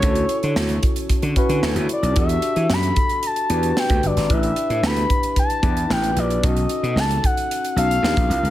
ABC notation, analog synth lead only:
X:1
M:4/4
L:1/8
Q:1/4=112
K:Edor
V:1 name="Analog synth lead"
c3 z4 d | e2 b2 a2 g d | e2 b2 a2 g d | ^d2 a f2 =f3 |]